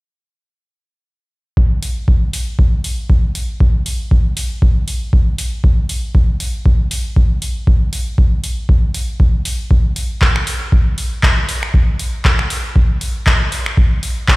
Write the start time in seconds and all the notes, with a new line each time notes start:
1.57 kick
1.83 open hi-hat
2.08 kick
2.33 open hi-hat
2.59 kick
2.84 open hi-hat
3.10 kick
3.35 open hi-hat
3.60 kick
3.86 open hi-hat
4.11 kick
4.37 open hi-hat
4.62 kick
4.88 open hi-hat
5.13 kick
5.38 open hi-hat
5.64 kick
5.89 open hi-hat
6.15 kick
6.40 open hi-hat
6.66 kick
6.91 open hi-hat
7.16 kick
7.42 open hi-hat
7.67 kick
7.93 open hi-hat
8.18 kick
8.44 open hi-hat
8.69 kick
8.94 open hi-hat
9.20 kick
9.45 open hi-hat
9.71 kick
9.96 open hi-hat
10.22 kick, clap
10.36 finger snap
10.47 open hi-hat
10.72 kick
10.98 open hi-hat
11.23 kick, clap
11.49 open hi-hat
11.63 finger snap
11.74 kick
11.99 open hi-hat
12.25 kick, clap
12.39 finger snap
12.50 open hi-hat
12.76 kick
13.01 open hi-hat
13.27 kick, clap
13.52 open hi-hat
13.66 finger snap
13.77 kick
14.03 open hi-hat
14.28 kick, clap